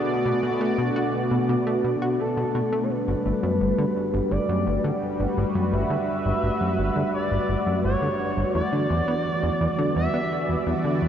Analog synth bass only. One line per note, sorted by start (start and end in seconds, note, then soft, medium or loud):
0.25 0.33 B2 medium
0.43 0.50 B2 medium
0.61 0.78 A3 medium
0.78 0.90 B2 medium
0.96 1.03 F#4 medium
1.31 1.39 B2 medium
1.49 1.56 B2 medium
1.67 1.83 A3 medium
1.84 1.96 B2 medium
2.02 2.09 F#4 medium
2.37 2.44 B2 medium
2.55 2.62 B2 medium
2.72 2.89 A3 medium
3.08 3.15 G1 medium
3.26 3.33 G1 medium
3.43 3.60 F#2 medium
3.61 3.73 G1 medium
3.78 3.86 D3 medium
4.14 4.21 G1 medium
4.31 4.39 G1 medium
4.49 4.66 F#2 medium
4.67 4.79 G1 medium
4.84 4.92 D3 medium
5.20 5.27 G1 medium
5.37 5.45 G1 medium
5.55 5.72 F#2 medium
5.73 5.85 G1 medium
5.90 5.97 D3 medium
6.25 6.33 G1 medium
6.43 6.50 G1 medium
6.61 6.78 F#2 medium
6.78 6.91 G1 medium
6.96 7.03 D3 medium
7.31 7.39 G1 medium
7.49 7.56 G1 medium
7.67 7.83 F#2 medium
7.84 7.96 G1 medium
8.02 8.09 D3 medium
8.37 8.44 G1 medium
8.55 8.62 E2 medium
8.72 8.89 D3 medium
8.90 9.02 E2 medium
9.08 9.15 B3 medium
9.43 9.50 E2 medium
9.61 9.68 E2 medium
9.78 9.95 D3 medium
9.96 10.08 E2 medium
10.14 10.21 B3 medium
10.49 10.56 E2 medium
10.67 10.74 E2 medium
10.84 11.01 D3 medium
11.02 11.08 E2 medium